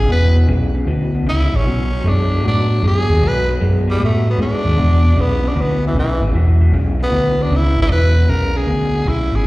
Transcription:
0.08 fingered electric bass E1, clean electric guitar E2 B2, tenor saxophone B4
0.35 clean electric guitar E2 B2
0.48 fingered electric bass B1, clean electric guitar E2 C#3
0.74 clean electric guitar E2 C#3
0.87 fingered electric bass D2, clean electric guitar E2 B2
1.14 clean electric guitar E2 B2
1.26 fingered electric bass C#2, clean electric guitar E2 C#3, tenor saxophone E4
1.53 fingered electric bass A1, clean electric guitar E2 C#3, tenor saxophone C#4
1.64 fingered electric bass B1, clean electric guitar B2 F#3
1.92 clean electric guitar B2 F#3
2.04 fingered electric bass F#2, clean electric guitar B2 G#3
2.08 tenor saxophone D4
2.31 clean electric guitar B2 G#3
2.44 fingered electric bass A2, clean electric guitar B2 F#3, tenor saxophone D4
2.70 clean electric guitar B2 F#3
2.82 fingered electric bass F#2, clean electric guitar B2 G#3
2.87 tenor saxophone G#4
3.09 fingered electric bass D#2, clean electric guitar B2 G#3
3.22 fingered electric bass B1, clean electric guitar B2 F#3
3.27 tenor saxophone B4
3.48 clean electric guitar B2 F#3
3.61 fingered electric bass F#2, clean electric guitar B2 G#3
3.88 clean electric guitar B2 G#3, tenor saxophone G3
4.00 fingered electric bass A2, clean electric guitar B2 F#3
4.05 tenor saxophone A3
4.26 clean electric guitar B2 F#3
4.30 tenor saxophone B3
4.38 fingered electric bass G#2, clean electric guitar B2 G#3, tenor saxophone D4
4.64 fingered electric bass D#2, clean electric guitar B2 G#3
4.77 fingered electric bass E1, clean electric guitar E2 B2
5.04 clean electric guitar E2 B2
5.16 fingered electric bass B1, clean electric guitar E2 C#3
5.21 tenor saxophone B3
5.43 clean electric guitar E2 C#3
5.48 tenor saxophone D4
5.56 fingered electric bass D2, clean electric guitar E2 B2
5.61 tenor saxophone B3
5.82 clean electric guitar E2 B2
5.87 tenor saxophone E3
5.95 fingered electric bass B1, clean electric guitar E2 C#3
5.99 tenor saxophone E3
6.20 fingered electric bass G#1, clean electric guitar E2 C#3
6.33 fingered electric bass E1, clean electric guitar E2 B2
6.61 clean electric guitar E2 B2
6.72 fingered electric bass B1, clean electric guitar E2 C#3
7.00 clean electric guitar E2 C#3, tenor saxophone B3
7.12 fingered electric bass D2, clean electric guitar E2 B2
7.38 clean electric guitar E2 B2
7.42 tenor saxophone D4
7.50 fingered electric bass C#2, clean electric guitar E2 C#3
7.56 tenor saxophone E4
7.76 fingered electric bass G#1, clean electric guitar E2 C#3
7.82 tenor saxophone E4
7.89 fingered electric bass E1, clean electric guitar E2 B2, tenor saxophone B4
8.16 clean electric guitar E2 B2
8.28 fingered electric bass B1, clean electric guitar E2 C#3, tenor saxophone A#4
8.55 clean electric guitar E2 C#3, tenor saxophone G#4
8.67 fingered electric bass D2, clean electric guitar E2 B2
8.94 clean electric guitar E2 B2
9.05 fingered electric bass B1, clean electric guitar E2 C#3, tenor saxophone E4
9.32 fingered electric bass G#1, clean electric guitar E2 C#3
9.36 tenor saxophone G#4

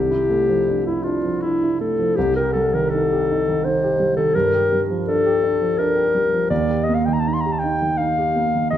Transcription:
Already playing: grand piano C2, clarinet G4
0.11 grand piano E4
0.30 grand piano A3
0.49 grand piano F3
0.68 grand piano D4
0.86 clarinet E4, grand piano E4
1.03 grand piano D4, clarinet F4
1.24 grand piano F3
1.42 grand piano D4, clarinet E4
1.63 grand piano E4
1.80 grand piano A3, clarinet A4
1.99 grand piano F3
2.16 grand piano C2, clarinet G4
2.36 grand piano G4, clarinet A#4
2.53 grand piano G3, clarinet A4
2.73 grand piano D#3, clarinet A#4
2.90 grand piano D#4, clarinet A4
3.12 grand piano G4
3.31 grand piano D#4
3.48 grand piano D#3
3.64 grand piano D#4, clarinet C5
3.84 grand piano G4
4.00 grand piano G3
4.17 grand piano D#3, clarinet A4
4.35 grand piano G2, clarinet A#4
4.54 grand piano G4
4.72 grand piano G3
4.90 grand piano F3
5.08 grand piano D4, clarinet A4
5.26 grand piano G4
5.43 grand piano D4
5.61 grand piano F3
5.78 grand piano D4, clarinet A#4
5.96 grand piano G4
6.14 grand piano G3
6.32 grand piano F3
6.50 grand piano D#2, clarinet D5
6.70 grand piano G4
6.84 clarinet D#5
6.89 grand piano A#3
6.94 clarinet F5
7.06 grand piano D#3, clarinet G5
7.13 clarinet A#5
7.20 clarinet A5
7.28 grand piano D#4, clarinet A#5
7.34 clarinet C6
7.41 clarinet A#5
7.45 grand piano G4
7.52 clarinet A5
7.59 clarinet G5
7.64 grand piano D#4
7.82 grand piano D#3
7.98 grand piano D#4, clarinet F5
8.18 grand piano G4
8.36 grand piano A#3
8.55 grand piano D#3
8.70 grand piano D#2, clarinet D#5

